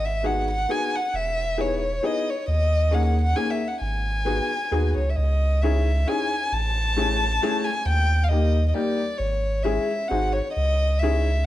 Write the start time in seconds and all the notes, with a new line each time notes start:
Already playing: G#1
0.05 E5
0.23 B3 D#4 F#4 G#4 F#5
0.51 F#5
0.69 B3 D#4 F#4 G#4 G#5
0.96 F#5
1.14 E1 E5
1.57 B3 D#4 E4 G#4 C#5
2.03 B3 D#4 E4 G#4 D#5
2.30 C#5
2.48 D#2 D#5
2.91 A#3 C#4 D#4 G#4 F#5
3.05 F#5
3.21 F#5
3.35 A#3 C#4 D#4 G#4 G#5
3.50 E5
3.67 F#5
3.81 G#1 G#5
4.25 B3 D#4 F#4 G#4
4.71 D#2 B3 D#4 F#4 G#4
4.96 C#2 C#5
5.10 E5
5.15 C#2 D#5
5.62 C#4 D#4 E4 G#4 E5
6.07 C#4 D#4 E4 G#4 G#5
6.53 A1 A5
6.96 A3 C#4 E4 G#4
7.42 A3 C#4 E4 G#4
7.64 G#5
7.86 D#2 G5
8.24 F5
8.29 G3 A#3 D#4 G4 D#5
8.68 D#5
8.74 G3 A#3 D#4 G4 D5
9.17 G#1 C#5
9.63 G#3 C#4 E4 G#4 E5
10.08 G#1 C4 D#4 F#4 G#4 F#5
10.33 C#5
10.53 C#2 D#5
10.99 D#4 E4 E5
11.03 C#4 G#4